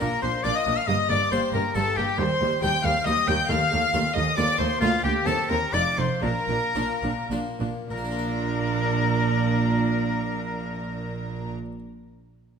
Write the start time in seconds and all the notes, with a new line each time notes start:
0.00 A#1 A#2 A#3 D4 F4 A#4 A#5
0.22 A#1 A#2 D4 C5 C6
0.44 A#1 A#2 A#3 D4 F4 D5 D6
0.54 D#5 D#6
0.66 A#1 A#2 D4
0.76 F5 F6
0.87 G1 G2 A#3 D#5 D#6
1.09 G1 G2 A#3 D5 D6
1.31 G1 G2 A#3 D4 G4 C5 C6
1.53 G1 G2 A#3 A#4 A#5
1.75 G1 G2 A#3 D4 G4 A4 A5
1.96 G1 G2 A#3 G4 G5
2.19 D#2 G3 C5 C6
2.41 D#2 G3
2.62 D#2 G3 C4 D#4 G4 G5 G6
2.84 D#2 G3 F5 F6
3.06 D#2 G3 C4 D#4 G4 D#5 D#6
3.27 D#2 G3 G5 G6
3.50 D#2 A3 F5 F6
3.71 D#2 A3
3.93 D#2 A3 C4 F4 A4
4.15 D#2 A3 D#5 D#6
4.37 D#2 A3 C4 F4 A4 D5 D6
4.58 D#2 A3 C5 C6
4.80 D2 A#3 F4 A#4 F5
5.03 D2 A#3 G4 G5
5.26 D#2 C4 D#4 G4 A4 A5
5.49 D#2 C4 A#4 A#5
5.73 F1 F2 A3 D#4 F4 D5 D6
5.97 F1 F2 D#4 C5 C6
6.23 A#1 A#2 D4 A#4 A#5
6.49 A#1 A#2 D4
6.75 A#1 A#2 A#3 D4 F4
7.02 A#1 A#2 D4
7.31 A#1 A#2 A#3 D4 F4
7.60 A#1 A#2 D4
7.90 A#1 A#2 D4 A#4 A#5
7.98 A#3
8.05 D4
8.12 F4
8.19 D5